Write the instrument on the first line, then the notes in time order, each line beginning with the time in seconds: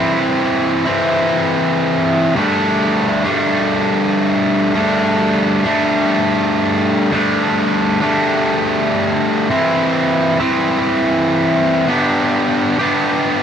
distorted electric guitar
Already playing: E3 C4
0.00 E4
0.85 E3 C4 E4
2.36 G3 A3 D4
3.24 G3 A3 D4
4.74 G3 A3 D4
5.64 G3 A3 D4
7.12 G3 A3 D4
8.02 G3 A3 D4
9.50 E3 C4 E4
10.40 E3 C4 E4
11.88 B3 D4 G4
12.79 B3 D4 G4